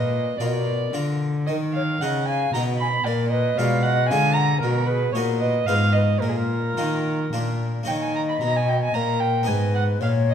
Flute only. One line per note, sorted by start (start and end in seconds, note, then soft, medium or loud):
0.00 0.38 B4 medium
0.40 0.93 A#4 soft
1.49 1.55 A#4 medium
1.76 1.82 C#5 medium
2.03 2.27 D#5 medium
2.28 2.54 F5 medium
2.55 2.80 F#5 medium
2.81 2.87 G#5 medium
3.06 3.31 A#4 medium
3.32 3.59 B4 medium
3.58 3.84 D5 medium
3.84 4.12 D#5 medium
4.10 4.37 F5 medium
4.36 4.61 F#5 medium
4.62 4.88 F#4 medium
4.89 5.14 G#4 medium
5.15 5.43 A#4 medium
5.42 5.67 B4 medium
5.68 5.74 B4 medium
5.95 6.01 B4 medium
6.23 7.58 F4 medium
7.89 8.97 D#5 medium
8.96 9.50 A#4 medium
9.48 10.02 B4 medium
10.01 10.34 C#5 medium